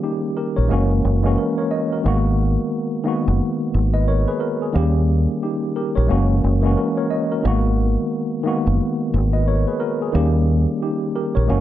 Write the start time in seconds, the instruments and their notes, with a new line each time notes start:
Already playing: tine electric piano D#3 G3 A#3 C#4 G4
0.04 tine electric piano D#4 G4
0.37 tine electric piano G4 A#4
0.56 fingered electric bass A#1, tine electric piano A#4 C#5
0.68 fingered electric bass F#1, tine electric piano E3 G#3 A#3 C#4
0.72 tine electric piano F#4
1.05 fingered electric bass F#1
1.22 tine electric piano E3 G#3 A#3 C#4
1.26 tine electric piano F#4
1.38 tine electric piano F#4 A#4
1.58 tine electric piano A#4 C#5
1.71 tine electric piano D#5
1.93 tine electric piano F#4 A#4
2.03 fingered electric bass G#1, tine electric piano D#3 G#3 A#3 B3
2.08 tine electric piano F#4
3.04 tine electric piano D#3 G#3 A#3 B3
3.08 tine electric piano F#4
3.28 fingered electric bass F#1
3.74 fingered electric bass G#1
3.94 tine electric piano B4 D#5
4.08 tine electric piano A#4 C#5
4.28 tine electric piano G#4 B4
4.40 tine electric piano F#4 A#4
4.62 tine electric piano G#4
4.72 fingered electric bass D#2, tine electric piano D#3 G3 A#3 C#4
4.77 tine electric piano G4
5.43 tine electric piano D#4 G4
5.76 tine electric piano G4 A#4
5.95 fingered electric bass A#1, tine electric piano A#4 C#5
6.07 fingered electric bass F#1, tine electric piano E3 G#3 A#3 C#4
6.11 tine electric piano F#4
6.44 fingered electric bass F#1
6.61 tine electric piano E3 G#3 A#3 C#4
6.66 tine electric piano F#4
6.77 tine electric piano F#4 A#4
6.97 tine electric piano A#4 C#5
7.10 tine electric piano D#5
7.32 tine electric piano F#4 A#4
7.43 fingered electric bass G#1, tine electric piano D#3 G#3 A#3 B3
7.47 tine electric piano F#4
8.43 tine electric piano D#3 G#3 A#3 B3
8.48 tine electric piano F#4
8.67 fingered electric bass F#1
9.14 fingered electric bass G#1
9.33 tine electric piano B4 D#5
9.48 tine electric piano A#4 C#5
9.67 tine electric piano G#4 B4
9.80 tine electric piano F#4 A#4
10.02 tine electric piano G#4
10.12 fingered electric bass D#2, tine electric piano D#3 G3 A#3 C#4
10.16 tine electric piano G4
10.82 tine electric piano D#4 G4
11.16 tine electric piano G4 A#4
11.35 fingered electric bass A#1, tine electric piano A#4 C#5
11.47 fingered electric bass F#1, tine electric piano E3 G#3 A#3 C#4
11.51 tine electric piano F#4